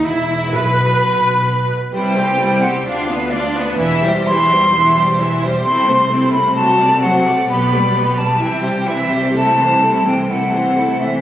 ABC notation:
X:1
M:4/4
L:1/8
Q:1/4=129
K:Clyd
V:1 name="Flute"
e2 b4- b z | g3 f =f2 d2 | e2 c'4- c' z | [K:Ador] c'3 b a2 f2 |
b3 a g2 e2 | a3 g f3 e |]
V:2 name="Violin section"
E2 B4- B z | c G c G d B d B | e c e c e c e c | [K:Ador] A c A c c d c d |
B d B d e c e c | A c A c A c A c |]
V:3 name="Violin section"
E2 B4- B z | E G E G =F D F D | E G E G E G E G | [K:Ador] E C E C F A F A |
G B G B E G E G | E C E C E C E C |]
V:4 name="Viola section" clef=bass
E2 B4- B z | G, C G, C D B, D B, | E, G, E, G, E, G, E, G, | [K:Ador] C A, C A, F, A, F, A, |
B, G, B, G, E, G, E, G, | A, E, A, E, A, E, A, E, |]
V:5 name="Cello section" clef=bass
E,,2 B,,4- B,, z | C,,4 D,,4 | E,,8 | [K:Ador] C,8 |
B,,4 C,4- | C,8 |]
V:6 name="Double bass section" clef=bass
E,,,2 B,,,4- B,,, z | C,,4 D,,4 | E,,,8 | [K:Ador] C,,8 |
B,,,4 C,,4- | C,,8 |]